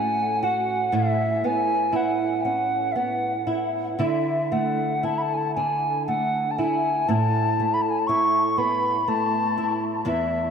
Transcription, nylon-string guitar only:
0.00 0.91 A2 medium
0.00 1.44 A3 soft
0.00 1.47 C#4 soft
0.00 0.41 F#4 soft
0.43 0.92 F#4 soft
0.92 3.98 A2 medium
0.92 1.92 E4 soft
1.44 2.94 B3 soft
1.92 3.46 E4 soft
2.45 4.11 C#4 soft
2.95 4.10 B3 soft
3.47 3.99 E4 soft
3.99 7.08 D3 medium
3.99 5.03 E4 soft
4.52 6.07 A3 soft
5.03 6.58 E4 soft
5.57 7.19 D4 soft
6.08 7.59 A3 soft
6.58 7.09 E4 soft
7.08 10.06 A2 medium
7.08 8.09 E4 soft
7.60 9.07 A3 soft
8.09 9.57 E4 soft
8.58 10.50 B3 soft
9.08 10.15 A3 soft
9.58 10.05 E4 soft
10.05 10.50 E2 medium
10.05 10.50 E4 medium

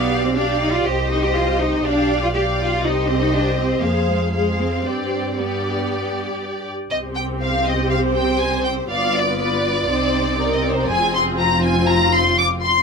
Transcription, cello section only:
0.00 0.24 B3 medium
0.25 0.37 C4 medium
0.37 0.61 D4 medium
0.62 0.74 D#4 medium
0.74 0.86 F4 medium
0.86 1.11 G4 medium
1.11 1.23 D#4 medium
1.24 1.36 G4 medium
1.37 1.61 F4 medium
1.61 1.85 D#4 medium
1.86 2.23 D4 medium
2.23 2.28 F4 medium
2.35 2.43 G4 medium
2.60 2.84 F4 medium
2.84 3.09 D#4 medium
3.09 3.21 C4 medium
3.22 3.34 D#4 medium
3.34 3.58 D4 medium
3.58 3.82 C4 medium
3.82 4.08 A#3 medium
4.08 4.33 G#3 medium
4.34 4.59 G#3 soft
4.60 4.84 C4 medium
4.85 5.36 C4 medium
5.38 6.40 B3 soft
6.91 8.87 C3 soft
8.91 9.88 G2 soft
9.90 10.88 C3 soft
10.90 12.83 F2 soft

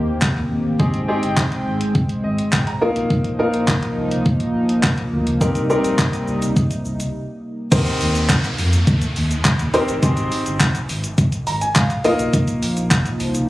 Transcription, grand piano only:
0.79 0.98 C4 medium
0.79 0.98 D#4 medium
0.79 0.99 G4 medium
0.79 0.99 G#4 medium
1.08 1.84 C4 medium
1.08 1.84 D#4 medium
1.08 1.84 G4 medium
1.08 1.84 G#4 medium
2.24 2.51 D#5 medium
2.53 2.66 G5 medium
2.67 3.07 A#5 medium
2.81 3.28 A#3 medium
2.81 3.28 D#4 medium
2.81 3.28 F4 medium
2.81 3.28 A#4 loud
3.39 4.15 A#3 medium
3.39 4.15 D#4 medium
3.39 4.15 F4 medium
3.39 4.15 A#4 loud
5.41 5.60 C4 medium
5.41 5.60 D#4 medium
5.41 5.60 G4 medium
5.41 5.60 A#4 loud
5.70 6.45 C4 medium
5.70 6.46 D#4 medium
5.70 6.46 G4 medium
5.70 6.46 A#4 loud
7.72 8.47 C4 medium
7.72 8.47 D#4 medium
7.72 8.47 G4 medium
7.72 8.47 A#4 medium
7.72 8.48 C5 loud
9.74 9.93 C4 medium
9.74 9.93 D#4 medium
9.74 9.93 G4 medium
9.74 9.93 A#4 medium
9.74 9.93 C5 loud
10.02 10.78 C4 medium
10.02 10.78 D#4 medium
10.02 10.78 G4 medium
10.02 10.78 G#4 medium
10.02 10.78 C5 loud
11.47 11.60 A#5 medium
11.61 11.75 G#5 medium
11.76 12.29 F5 medium
12.04 12.97 A#3 loud
12.04 12.97 D#4 medium
12.04 12.97 F4 medium
12.04 12.97 A#4 medium
12.04 12.97 D#5 loud

